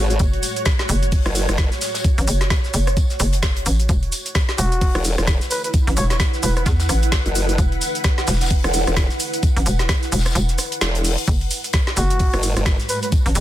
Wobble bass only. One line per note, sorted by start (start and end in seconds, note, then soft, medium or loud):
0.00 0.18 G#1 loud
1.26 1.47 F#1 loud
1.49 1.70 F#1 loud
4.95 5.16 E1 loud
5.18 5.39 E1 medium
7.26 7.57 F#1 loud
8.64 8.85 E1 loud
8.87 9.08 E1 loud
10.81 11.16 E1 loud
12.34 12.54 F#1 loud
12.57 12.77 F#1 loud